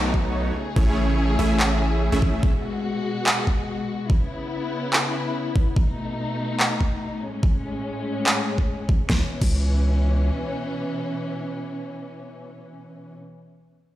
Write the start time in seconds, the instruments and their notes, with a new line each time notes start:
Already playing: 808-style bass B1, string section B2 A3 D#4, supersaw synth A3 B3 D#4 F#4 C#5
0.14 kick
0.56 string section C#3 A3 G#4
0.76 808-style bass A1, supersaw synth A3 C#4 E4 G#4 C#5, kick
1.39 808-style bass A1, supersaw synth A3 C#4 E4 G#4 E5
1.60 clap
2.12 808-style bass A1, supersaw synth A3 C#4 E4 G#4 E5
2.22 kick
2.43 string section B2 G#3 F#4, kick
3.26 clap
3.47 kick
4.10 string section C#3 B3 E4, kick
4.93 clap
5.56 kick
5.76 string section B2 A3 D#4, kick
6.60 clap
6.81 kick
7.22 string section A2 G#3 C#4
7.43 kick
8.26 clap
8.58 kick
8.89 kick
9.10 808-style bass C#2, string section B2 E3 C#4, kick, snare
9.42 808-style bass C#2, kick, crash